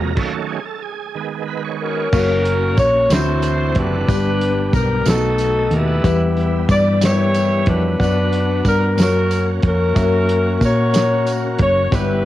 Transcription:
Already playing: fingered electric bass E1, tonewheel organ C3 F#3 G#3 A#3 A#4, tine electric piano C4 F4 F#4 G#4 A4 A#4
0.15 tonewheel organ D#3 F#3 A3 C#4 A4, kick, crash
0.49 tonewheel organ G#4
0.65 tonewheel organ A4
0.82 tonewheel organ G#4
1.15 tonewheel organ D#3 G#3 B3
1.48 tonewheel organ B4
1.65 tonewheel organ C#5
1.82 saxophone section C#4 F#4 A#4
2.12 fingered electric bass F#1, tine electric piano A#3 C#4 F#4 A#4 C#5, tonewheel organ A#3 C#4 F4, kick, crash, tambourine
2.20 tonewheel organ F#4
2.46 closed hi-hat
2.77 fingered electric bass A#1, saxophone section C#5, kick, closed hi-hat, tambourine
3.10 fingered electric bass D2, tine electric piano D3 C4 D4 E4 F4 B5, tonewheel organ E3 A3 C4 D4 F4, saxophone section E4 F#4 C5, snare, closed hi-hat, tambourine
3.16 tine electric piano F#4, tonewheel organ F#5
3.42 closed hi-hat, tambourine
3.75 fingered electric bass F#1, saxophone section D4 G4 B4, kick, closed hi-hat
4.08 fingered electric bass G1, tine electric piano G2 G3 B3 D4 G4 B4, tonewheel organ B3 D4 G4, kick, closed hi-hat, tambourine
4.41 closed hi-hat
4.73 fingered electric bass B1, saxophone section A#4, kick, closed hi-hat, tambourine
5.05 fingered electric bass B1, tine electric piano B2 A3 B3 D#4 F#4 A4, tonewheel organ A3 B3 C#4 A4, saxophone section D#4 F#4 A4, snare, closed hi-hat, tambourine
5.13 tonewheel organ D#5
5.38 closed hi-hat, tambourine
5.71 fingered electric bass D#2, saxophone section E4 G4 B4, closed hi-hat
6.03 fingered electric bass E2, tine electric piano E3 G3 B3 E4 G4 B4, tonewheel organ G3 B3 E4, kick, closed hi-hat, tambourine
6.37 closed hi-hat
6.69 fingered electric bass G2, saxophone section D5, kick, closed hi-hat, tambourine
7.01 tine electric piano G3 B3 E4 G4 A#4, saxophone section E4 G4 C#5, snare, closed hi-hat, tambourine
7.09 tine electric piano B4
7.34 closed hi-hat, tambourine
7.66 fingered electric bass F2, saxophone section D4 F#4 B4, kick, closed hi-hat
7.99 fingered electric bass F#2, tine electric piano B3 D4 F#4 B4 D5, tonewheel organ B3 D4 F#4, kick, closed hi-hat, tambourine
8.33 closed hi-hat
8.65 fingered electric bass G2, saxophone section A#4, kick, closed hi-hat, tambourine
8.97 fingered electric bass F#2, tine electric piano A#3 C#4 F#4 A#4 C#5, tonewheel organ A#3 C#4 F#4, snare, closed hi-hat, tambourine
9.01 saxophone section C#4 F#4 A#4
9.31 closed hi-hat, tambourine
9.63 fingered electric bass F2, kick, closed hi-hat
9.67 saxophone section C#4 F#4 A#4
9.94 fingered electric bass F#2, tine electric piano A#3 C#4 F#4 A#4 E5, kick, closed hi-hat, tambourine
10.29 closed hi-hat
10.61 fingered electric bass A#2, saxophone section F#4 A#4 C#5, kick, closed hi-hat, tambourine
10.93 tine electric piano A#3 C#4 F#4 A#4 C#5, snare, closed hi-hat, tambourine
11.27 closed hi-hat, tambourine
11.59 fingered electric bass F#1, saxophone section C#5, kick, closed hi-hat
11.91 fingered electric bass G1, tine electric piano G2 G3 B3 E4 G4 B4, tonewheel organ B3 E4 G4, saxophone section E4 G4 B4, kick, closed hi-hat, tambourine

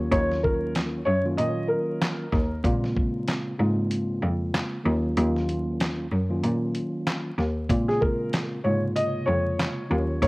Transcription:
0.11 cello D#2, tine electric piano D#3 F#3 A#3 C#4 F4, upright piano C#5, kick, closed hi-hat
0.31 snare
0.43 upright piano A#4, kick
0.75 snare, clap, closed hi-hat
1.05 cello F#2, upright piano C#5
1.23 tine electric piano D#3 F#3 A#3 C#4 F4
1.37 cello A#2, upright piano D#5, closed hi-hat
1.68 upright piano A#4
2.01 snare, clap, closed hi-hat
2.32 cello D#2, kick, snare
2.63 cello A#2, tine electric piano C#3 G#3 A#3 C4 F4, kick, closed hi-hat
2.84 snare
2.97 kick
3.28 snare, clap, closed hi-hat
3.58 cello G#2, tine electric piano C#3 G#3 A#3 C4 F4
3.91 closed hi-hat
4.23 cello F2
4.54 snare, clap, closed hi-hat
4.83 cello D#2, tine electric piano D#3 F#3 A#3 C#4 F4
5.16 cello D#2, tine electric piano D#3 F#3 A#3 C#4 F4, closed hi-hat
5.36 snare
5.49 closed hi-hat
5.80 snare, clap, closed hi-hat
6.12 cello F#2
6.29 tine electric piano D#3 F#3 A#3 C#4 F4
6.44 cello A#2, closed hi-hat
6.75 closed hi-hat
7.07 snare, clap, closed hi-hat
7.38 cello D#2, snare
7.69 cello A#2, tine electric piano C#3 G#3 A#3 C4 F4, kick, closed hi-hat
7.88 upright piano G#4, snare
8.01 upright piano A#4, kick
8.33 snare, clap, closed hi-hat
8.63 cello G#2, tine electric piano C3 C#3 G#3 A#3 F4, upright piano C#5
8.96 upright piano D#5, closed hi-hat
9.26 cello F2, upright piano C#5
9.59 snare, clap, closed hi-hat
9.88 cello D#2, tine electric piano D#3 F#3 A#3 C#4 F4
10.21 cello D#2, tine electric piano D#3 F#3 A#3 C#4 F4, upright piano C#5, kick, closed hi-hat

